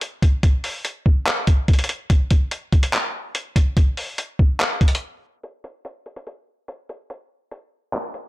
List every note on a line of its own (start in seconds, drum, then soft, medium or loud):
0.01 closed hi-hat medium
0.22 kick medium
0.22 closed hi-hat medium
0.43 kick loud
0.43 closed hi-hat medium
0.64 open hi-hat medium
0.85 closed hi-hat medium
1.06 kick medium
1.27 clap loud
1.27 closed hi-hat medium
1.47 kick loud
1.47 closed hi-hat medium
1.68 kick medium
1.68 closed hi-hat soft
1.73 closed hi-hat medium
1.79 closed hi-hat medium
1.84 closed hi-hat medium
1.89 closed hi-hat medium
2.10 kick loud
2.10 closed hi-hat medium
2.31 kick medium
2.31 closed hi-hat medium
2.51 closed hi-hat medium
2.73 kick medium
2.73 closed hi-hat soft
2.83 closed hi-hat medium
2.93 clap loud
2.93 closed hi-hat medium
3.35 closed hi-hat medium
3.56 kick medium
3.56 closed hi-hat medium
3.77 kick loud
3.77 closed hi-hat medium
3.97 open hi-hat medium
4.18 closed hi-hat medium
4.39 kick medium
4.60 clap loud
4.60 closed hi-hat medium
4.81 kick medium
4.81 closed hi-hat soft
4.88 closed hi-hat medium
4.95 closed hi-hat medium
5.43 closed hi-hat medium
5.64 closed hi-hat medium
5.85 closed hi-hat medium
6.06 closed hi-hat soft
6.16 closed hi-hat medium
6.27 closed hi-hat medium
6.68 closed hi-hat medium
6.89 closed hi-hat medium
7.10 closed hi-hat medium
7.51 closed hi-hat medium
7.93 clap loud
7.93 closed hi-hat medium
8.14 closed hi-hat medium